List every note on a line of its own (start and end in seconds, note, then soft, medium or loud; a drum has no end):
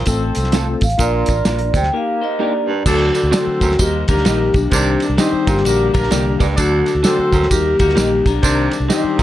0.06 0.30 A1 loud
0.06 0.38 A3 medium
0.06 0.38 C4 medium
0.06 0.81 C4 medium
0.06 0.79 C4 medium
0.06 0.38 F4 medium
0.06 0.81 F4 medium
0.06 0.38 A4 medium
0.06 0.81 A4 medium
0.06 0.79 A4 medium
0.06 0.81 C5 medium
0.06 kick loud
0.06 closed hi-hat medium
0.06 tambourine medium
0.35 0.74 C2 medium
0.35 closed hi-hat medium
0.35 tambourine medium
0.44 snare soft
0.52 0.84 A3 medium
0.52 0.66 A3 medium
0.52 0.85 C4 medium
0.52 0.66 C4 medium
0.52 0.85 F4 medium
0.52 0.66 F4 medium
0.52 0.85 A4 loud
0.52 0.66 A4 medium
0.52 snare loud
0.52 closed hi-hat medium
0.52 tambourine medium
0.81 0.97 A1 medium
0.81 1.01 F5 medium
0.81 kick medium
0.81 closed hi-hat medium
0.81 tambourine soft
0.90 closed hi-hat medium
0.98 1.23 A#1 loud
0.98 1.35 A#2 medium
0.98 1.30 A#3 medium
0.98 1.74 A#3 medium
0.98 1.31 D4 medium
0.98 1.74 D4 medium
0.98 1.73 F4 medium
0.98 1.31 F4 medium
0.98 1.31 A#4 loud
0.98 1.74 A#4 medium
0.98 1.47 D5 medium
0.98 kick loud
0.98 closed hi-hat medium
0.98 tambourine loud
1.26 1.43 A1 medium
1.26 kick loud
1.26 closed hi-hat medium
1.26 tambourine medium
1.45 1.70 A#1 loud
1.45 1.77 A#3 medium
1.45 1.58 A#3 medium
1.45 1.77 D4 medium
1.45 1.59 D4 medium
1.45 1.78 F4 medium
1.45 1.59 F4 medium
1.45 1.78 A#4 medium
1.45 1.59 A#4 medium
1.45 snare loud
1.45 closed hi-hat medium
1.45 tambourine loud
1.59 closed hi-hat soft
1.74 1.89 D2 medium
1.74 1.89 C3 medium
1.74 1.94 G5 loud
1.74 kick loud
1.74 closed hi-hat medium
1.74 tambourine medium
1.83 snare soft
1.93 2.24 A#3 medium
1.93 2.67 A#3 medium
1.93 2.21 A#3 medium
1.93 2.67 D#4 medium
1.93 2.25 D#4 medium
1.93 2.67 G4 medium
1.93 2.25 G4 medium
1.93 2.21 G4 medium
1.93 2.67 A#4 medium
1.93 2.25 A#4 medium
1.93 2.22 F5 loud
2.21 2.39 D#4 medium
2.21 2.38 C5 medium
2.21 2.31 D#5 loud
2.39 2.52 A#3 medium
2.39 2.71 A#3 medium
2.39 2.84 D4 medium
2.39 2.71 D#4 medium
2.39 2.52 D#4 medium
2.39 2.71 G4 medium
2.39 2.52 G4 medium
2.39 2.71 A#4 medium
2.39 2.84 A#4 medium
2.39 2.52 A#4 medium
2.39 2.83 D5 medium
2.67 2.81 G2 medium
2.85 3.21 D2 medium
2.85 3.09 D2 loud
2.85 3.17 D3 medium
2.85 3.17 F#3 medium
2.85 3.17 A3 medium
2.85 3.17 D4 medium
2.85 3.09 D4 loud
2.85 3.09 F#4 loud
2.85 3.32 F#4 loud
2.85 3.18 F#4 medium
2.85 3.09 A4 loud
2.85 3.09 D5 loud
2.85 kick loud
2.85 crash loud
2.85 tambourine loud
3.14 3.29 D4 medium
3.14 3.29 F#4 medium
3.14 3.29 A4 medium
3.14 3.29 D5 medium
3.14 ride medium
3.14 tambourine medium
3.23 3.31 D2 medium
3.31 3.64 D3 medium
3.31 3.64 F#3 medium
3.31 3.64 A3 medium
3.31 3.76 C4 loud
3.31 3.44 D4 medium
3.31 3.64 D4 medium
3.31 3.44 F#4 medium
3.31 3.76 F#4 medium
3.31 3.64 F#4 medium
3.31 3.81 F#4 loud
3.31 3.76 A4 medium
3.31 3.45 A4 medium
3.31 3.76 C5 loud
3.31 3.45 D5 loud
3.31 snare loud
3.31 ride medium
3.31 tambourine loud
3.47 muted fingered electric bass stroke soft
3.61 3.76 D2 medium
3.61 3.75 F#2 medium
3.61 kick loud
3.61 ride medium
3.61 tambourine medium
3.71 snare soft
3.79 4.03 D#2 loud
3.79 4.10 D#3 medium
3.79 4.11 G3 medium
3.79 4.11 A#3 medium
3.79 4.03 A#3 medium
3.79 4.11 D#4 medium
3.79 4.07 D#4 medium
3.79 4.03 D#4 medium
3.79 3.92 G4 loud
3.79 4.11 G4 medium
3.79 4.03 G4 medium
3.79 4.03 A#4 loud
3.79 4.06 C5 medium
3.79 kick loud
3.79 ride medium
3.79 tambourine medium
4.08 4.23 D2 medium
4.08 4.52 A#3 medium
4.08 4.25 D4 medium
4.08 4.52 D#4 medium
4.08 4.57 G4 loud
4.08 4.53 G4 medium
4.08 4.25 A#4 medium
4.08 4.52 A#4 loud
4.08 kick medium
4.08 ride medium
4.08 tambourine medium
4.17 snare soft
4.25 4.49 A#1 medium
4.25 4.57 D#3 medium
4.25 4.57 G3 medium
4.25 4.70 A#3 medium
4.25 4.57 A#3 medium
4.25 4.37 D#4 medium
4.25 4.58 D#4 medium
4.25 4.38 G4 medium
4.25 4.70 G4 medium
4.25 4.58 G4 medium
4.25 4.38 A#4 medium
4.25 4.38 D#5 medium
4.25 snare loud
4.25 ride medium
4.25 tambourine medium
4.54 4.69 B1 loud
4.54 5.21 D4 medium
4.54 kick medium
4.54 ride medium
4.54 tambourine medium
4.71 4.95 C2 loud
4.71 5.07 C3 medium
4.71 5.03 D#3 medium
4.71 5.04 G3 medium
4.71 5.04 C4 medium
4.71 4.96 D4 loud
4.71 5.04 D#4 medium
4.71 4.95 G4 loud
4.71 5.04 G4 medium
4.71 4.96 A#4 loud
4.71 4.96 D5 loud
4.71 kick loud
4.71 ride medium
4.71 tambourine loud
5.00 5.16 D4 medium
5.00 5.16 G4 medium
5.00 5.16 A#4 medium
5.00 5.16 D5 medium
5.00 ride medium
5.00 tambourine medium
5.10 5.17 C2 loud
5.18 5.47 D#3 medium
5.18 5.47 G3 medium
5.18 5.62 C4 loud
5.18 5.48 C4 medium
5.18 5.63 D4 medium
5.18 5.30 D#4 medium
5.18 5.48 D#4 medium
5.18 5.31 G4 medium
5.18 5.63 G4 loud
5.18 5.48 G4 medium
5.18 5.31 C5 loud
5.18 5.62 C5 loud
5.18 5.31 D#5 loud
5.18 snare loud
5.18 ride medium
5.18 tambourine medium
5.33 muted fingered electric bass stroke soft
5.46 5.62 G1 loud
5.46 5.61 A#2 medium
5.46 6.01 D3 medium
5.46 6.01 G3 medium
5.46 6.01 A#3 medium
5.46 6.01 D4 medium
5.46 6.02 G4 medium
5.46 6.08 G4 loud
5.46 kick loud
5.46 ride medium
5.46 tambourine medium
5.57 snare soft
5.65 5.89 A#1 loud
5.65 5.89 A#3 loud
5.65 5.89 D4 medium
5.65 5.92 F#4 medium
5.65 5.89 G4 medium
5.65 5.89 A#4 loud
5.65 5.92 D5 medium
5.65 ride medium
5.65 tambourine medium
5.94 6.09 A#1 medium
5.94 6.38 A#3 medium
5.94 6.11 D4 medium
5.94 6.38 D4 medium
5.94 6.38 G4 medium
5.94 6.10 A#4 medium
5.94 6.38 A#4 loud
5.94 kick loud
5.94 ride medium
5.94 tambourine medium
6.03 snare soft
6.11 6.35 C2 loud
6.11 6.42 D3 loud
6.11 6.43 G3 medium
6.11 6.43 A#3 medium
6.11 6.56 A#3 medium
6.11 6.23 D4 medium
6.11 6.43 D4 medium
6.11 6.24 G4 medium
6.11 6.56 G4 medium
6.11 6.43 G4 loud
6.11 6.24 A#4 medium
6.11 6.24 D5 medium
6.11 snare loud
6.11 ride medium
6.11 tambourine loud
6.39 6.55 C#2 loud
6.39 6.53 G2 medium
6.39 6.46 D4 medium
6.39 6.46 G4 medium
6.39 6.46 A#4 medium
6.39 6.46 D5 medium
6.39 kick medium
6.39 ride medium
6.39 tambourine medium
6.57 6.93 D2 loud
6.57 6.81 D2 loud
6.57 6.89 D3 medium
6.57 6.89 F#3 medium
6.57 6.89 A3 medium
6.57 6.80 D4 loud
6.57 6.90 D4 medium
6.57 6.80 F#4 loud
6.57 6.90 F#4 medium
6.57 7.05 F#4 loud
6.57 6.80 A4 loud
6.57 6.80 D5 loud
6.57 kick loud
6.57 ride medium
6.57 tambourine loud
6.86 7.01 D4 medium
6.86 7.01 F#4 medium
6.86 7.01 A4 medium
6.86 7.01 D5 medium
6.86 ride medium
6.86 tambourine medium
6.95 7.02 D2 medium
7.03 7.35 D3 medium
7.03 7.35 F#3 medium
7.03 7.35 A3 medium
7.03 7.48 C4 loud
7.03 7.16 D4 loud
7.03 7.36 D4 medium
7.03 7.16 F#4 loud
7.03 7.48 F#4 loud
7.03 7.53 F#4 loud
7.03 7.35 A4 medium
7.03 7.16 A4 loud
7.03 7.48 A4 loud
7.03 7.48 C5 loud
7.03 7.17 D5 loud
7.03 snare loud
7.03 ride medium
7.03 tambourine loud
7.19 muted fingered electric bass stroke soft
7.32 7.47 D2 medium
7.32 7.47 F#2 medium
7.32 kick loud
7.32 ride medium
7.32 tambourine medium
7.42 snare soft
7.50 7.74 D#2 loud
7.50 7.82 D#3 medium
7.50 7.82 G3 medium
7.50 7.82 A#3 medium
7.50 7.74 A#3 medium
7.50 7.82 D#4 medium
7.50 7.74 D#4 medium
7.50 7.82 G4 medium
7.50 7.74 G4 medium
7.50 7.80 G4 loud
7.50 7.74 A#4 loud
7.50 kick loud
7.50 ride medium
7.50 tambourine medium
7.79 7.94 D2 medium
7.79 8.24 A#3 medium
7.79 7.97 A#3 medium
7.79 8.23 D#4 medium
7.79 7.97 F#4 medium
7.79 8.24 G4 medium
7.79 8.29 G4 loud
7.79 8.24 A#4 loud
7.79 kick loud
7.79 ride medium
7.79 tambourine medium
7.89 snare soft
7.95 8.21 A#1 medium
7.95 8.28 D#3 medium
7.95 8.28 G3 medium
7.95 8.28 A#3 medium
7.95 8.25 A#3 medium
7.95 8.09 D#4 medium
7.95 8.28 D#4 medium
7.95 8.09 G4 medium
7.95 8.28 G4 medium
7.95 8.25 G4 medium
7.95 8.09 A#4 medium
7.95 8.09 D#5 medium
7.95 snare loud
7.95 ride medium
7.95 tambourine loud
8.26 8.40 B1 loud
8.26 8.71 D4 medium
8.26 8.88 D4 loud
8.26 8.71 A#4 medium
8.26 kick medium
8.26 ride medium
8.26 tambourine medium
8.42 8.67 C2 loud
8.42 8.79 C3 loud
8.42 8.75 D#3 medium
8.42 8.75 G3 medium
8.42 8.75 C4 medium
8.42 8.67 D4 loud
8.42 8.75 D#4 medium
8.42 8.67 G4 loud
8.42 8.75 G4 medium
8.42 8.67 A#4 loud
8.42 8.67 D5 loud
8.42 kick loud
8.42 ride medium
8.42 tambourine loud
8.71 8.86 D4 medium
8.71 8.86 G4 medium
8.71 8.86 A#4 medium
8.71 8.86 D5 medium
8.71 ride medium
8.71 tambourine medium
8.80 8.88 C2 medium
8.89 9.19 D#3 medium
8.89 9.18 G3 medium
8.89 9.19 C4 medium
8.89 9.23 C4 medium
8.89 9.23 D4 loud
8.89 9.02 D#4 medium
8.89 9.19 D#4 medium
8.89 9.21 D#4 medium
8.89 9.02 G4 medium
8.89 9.19 G4 medium
8.89 9.23 G4 medium
8.89 9.02 C5 loud
8.89 9.23 C5 loud
8.89 9.02 D#5 loud
8.89 snare loud
8.89 ride medium
8.89 tambourine loud
9.04 muted fingered electric bass stroke soft
9.17 9.23 G1 loud
9.17 9.23 A#2 medium
9.17 9.23 D3 medium
9.17 9.23 G3 medium
9.17 9.23 A#3 medium
9.17 9.23 D4 medium
9.17 9.23 D5 medium
9.17 kick loud
9.17 tambourine medium